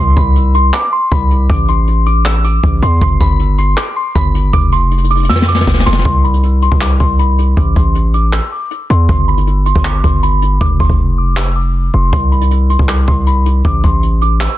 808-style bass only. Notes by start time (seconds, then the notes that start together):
Already playing: C2
0.17 C2
1.12 C2
1.50 A1
2.63 A1
2.82 E2
3.01 G1
3.21 G1
4.15 G1
4.53 F1
5.29 F2
5.67 F1
5.86 F1
6.05 C2
6.72 C2
7.00 C2
7.57 A1
7.76 A1
8.90 E2
9.09 G1
9.76 G1
10.04 G1
10.61 F1
10.80 F1
10.89 F1
11.94 F1
12.13 C2
12.79 C2
13.08 C2
13.65 A1
13.84 A1